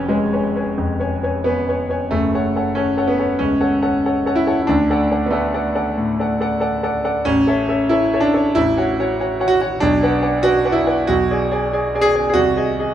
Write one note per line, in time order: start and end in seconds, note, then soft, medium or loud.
0.00 2.13 F1 medium
0.00 0.78 F2 medium
0.00 2.13 C#4 medium
0.00 0.09 B4 soft
0.00 0.10 C#5 soft
0.00 0.10 G#5 medium
0.08 1.44 G#3 medium
0.08 0.29 B4 soft
0.08 0.30 C#5 soft
0.08 0.30 G#5 soft
0.33 0.53 B4 soft
0.33 0.53 C#5 soft
0.33 0.53 G#5 soft
0.56 0.76 B4 soft
0.56 0.76 C#5 soft
0.56 0.76 G#5 soft
0.78 0.99 F2 medium
0.99 1.20 B4 soft
0.99 1.20 C#5 soft
0.99 1.20 G#5 soft
1.23 1.43 B4 medium
1.23 1.43 C#5 soft
1.23 1.43 G#5 medium
1.44 2.11 B3 medium
1.44 1.65 B4 soft
1.44 1.65 C#5 soft
1.44 1.65 G#5 medium
1.68 1.87 B4 soft
1.68 1.88 C#5 medium
1.68 1.88 G#5 medium
1.89 2.09 B4 soft
1.89 2.09 C#5 soft
1.89 2.10 G#5 medium
2.11 2.32 F#1 medium
2.11 2.33 F#2 medium
2.11 2.76 A3 medium
2.35 2.53 A4 soft
2.35 2.54 C#5 medium
2.35 2.54 F#5 medium
2.56 2.75 A4 soft
2.56 2.75 C#5 soft
2.56 2.75 F#5 medium
2.75 3.08 C#4 medium
2.75 2.95 A4 soft
2.75 2.96 C#5 soft
2.75 2.96 F#5 medium
2.97 3.16 A4 soft
2.97 3.17 C#5 medium
2.97 3.17 F#5 medium
3.07 3.40 B3 medium
3.19 3.38 A4 soft
3.19 3.38 C#5 soft
3.19 3.38 F#5 medium
3.39 3.61 C#2 medium
3.39 4.36 C#4 medium
3.61 3.81 A4 medium
3.61 3.80 C#5 soft
3.61 3.81 F#5 medium
3.82 4.02 A4 medium
3.82 4.02 C#5 medium
3.82 4.02 F#5 medium
4.06 4.25 A4 medium
4.06 4.25 C#5 medium
4.06 4.25 F#5 medium
4.26 4.45 A4 medium
4.26 4.45 C#5 medium
4.26 4.46 F#5 medium
4.35 4.60 E4 loud
4.47 4.66 A4 medium
4.47 4.66 C#5 medium
4.47 4.67 F#5 medium
4.62 4.69 E4 medium
4.67 4.89 D2 medium
4.67 5.26 D4 medium
4.90 5.10 A4 medium
4.90 5.10 D5 medium
4.90 5.10 F#5 medium
5.11 5.30 A4 soft
5.11 5.30 D5 soft
5.11 5.31 F#5 medium
5.26 5.33 B3 medium
5.31 6.61 A3 medium
5.31 5.52 A4 medium
5.31 5.52 D5 soft
5.31 5.53 F#5 medium
5.54 5.74 A4 medium
5.54 5.74 D5 medium
5.54 5.74 F#5 medium
5.75 5.96 A4 medium
5.75 5.96 D5 medium
5.75 5.96 F#5 medium
5.98 6.19 A2 medium
6.20 6.39 A4 medium
6.20 6.39 D5 soft
6.20 6.40 F#5 medium
6.41 6.59 A4 medium
6.41 6.60 D5 medium
6.41 6.60 F#5 medium
6.60 6.80 A4 medium
6.60 6.81 D5 medium
6.60 6.81 F#5 medium
6.83 7.02 A4 medium
6.83 7.03 D5 medium
6.83 7.03 F#5 medium
7.04 7.24 A4 medium
7.04 7.24 D5 medium
7.04 7.24 F#5 medium
7.25 7.47 A1 medium
7.25 7.91 C#4 loud
7.47 7.67 A4 medium
7.47 7.68 C#5 medium
7.47 7.67 E5 medium
7.69 7.89 A4 medium
7.69 7.89 C#5 medium
7.69 7.89 E5 medium
7.89 8.23 E4 loud
7.89 8.11 A4 medium
7.89 8.11 C#5 medium
7.89 8.12 E5 medium
8.14 8.32 A4 medium
8.14 8.33 C#5 medium
8.14 8.34 E5 medium
8.20 8.55 D4 loud
8.34 8.54 A4 medium
8.34 8.54 C#5 medium
8.34 8.54 E5 medium
8.55 8.77 A1 medium
8.55 9.50 E4 loud
8.77 8.96 F#4 medium
8.77 8.96 C#5 medium
8.77 8.97 F#5 medium
8.99 9.18 F#4 medium
8.99 9.18 C#5 medium
8.99 9.18 F#5 medium
9.20 9.38 F#4 medium
9.20 9.39 C#5 medium
9.20 9.39 F#5 medium
9.40 9.46 F#4 medium
9.40 9.59 C#5 medium
9.40 9.60 F#5 medium
9.48 9.59 F#4 loud
9.61 9.80 F#4 medium
9.61 9.80 C#5 medium
9.61 9.80 F#5 medium
9.80 10.03 B1 medium
9.80 10.44 D4 loud
10.03 10.21 B4 medium
10.03 10.21 D5 medium
10.03 10.21 F#5 medium
10.22 10.42 B4 medium
10.22 10.42 D5 medium
10.22 10.42 F#5 medium
10.43 10.76 F#4 loud
10.43 10.63 B4 medium
10.43 10.63 D5 medium
10.43 10.64 F#5 medium
10.65 10.84 B4 medium
10.65 10.85 D5 medium
10.65 10.85 F#5 medium
10.72 11.07 E4 loud
10.87 11.06 B4 medium
10.87 11.07 D5 medium
10.87 11.06 F#5 medium
11.07 11.30 B1 medium
11.07 12.04 F#4 loud
11.31 11.50 G#4 medium
11.31 11.50 D5 medium
11.31 11.50 G#5 medium
11.52 11.71 G#4 medium
11.52 11.71 D5 medium
11.52 11.71 G#5 medium
11.73 11.92 G#4 medium
11.73 11.93 D5 medium
11.73 11.92 G#5 medium
11.95 12.00 G#4 medium
11.95 12.14 D5 medium
11.95 12.14 G#5 medium
12.01 12.14 G#4 loud
12.16 12.28 G#4 medium
12.16 12.35 D5 medium
12.16 12.35 G#5 medium
12.29 12.36 G#4 medium
12.34 12.56 C2 medium
12.34 12.94 F#4 loud
12.57 12.77 G#4 medium
12.57 12.77 D#5 medium
12.57 12.77 G#5 medium
12.79 12.94 G#4 medium
12.79 12.94 D#5 medium
12.79 12.94 G#5 medium